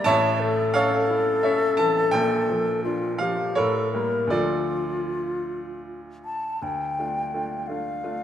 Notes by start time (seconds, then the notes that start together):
0.04 A1 A2 C#5 E5 A5
0.40 A3 A4
0.74 C#4 A4 C#5 F5
1.10 E4
1.43 C#4 A4 C#5 E5
1.77 E3 A5
2.11 A#1 A#2 G5
2.50 F3
2.84 D4 F4
3.18 F3 G4 F5
3.55 A2 A4 A#4 C#5
3.93 G3 A#3 A#4
4.27 D2 D3 F3 D5
4.31 A3 F4 A4
6.25 A5
6.62 D2 G5
6.99 A3 D4 F4
7.34 A3 D4 F4
7.67 A3 D4 F4 F5
8.04 A3 D4 F4